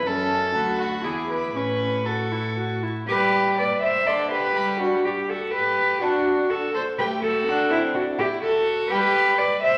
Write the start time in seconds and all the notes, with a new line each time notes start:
0.06 F#2 C#4 A4 A5
0.55 D2 F#4 B5
0.79 F#4
1.04 E2 E4 G#4 D6
1.30 B4
1.55 A2 C#4 B4 C#6
2.06 F#4 A4 C#6
2.32 E4
2.58 F#4
2.83 E4
3.08 G3 G4 B4 D6
3.58 B4 D5
3.82 C5 E5
4.06 D3 A4 D5 C6
4.31 G4 B4
4.56 G3 B5
4.80 D4 F#4
5.05 D4 G4
5.29 F#4 A4
5.53 G4 B4
6.02 D4 F#4 A5
6.50 F#4 A4
6.74 A4 C5
6.98 A3 G4 B4 G5
7.22 F#4 A4
7.47 D4 F#5
7.71 C4 E4
7.94 D4 F#4
8.18 E4 G4
8.42 F#4 A4
8.90 G3 G4 B4 G5
9.38 B4 D5
9.63 C5 E5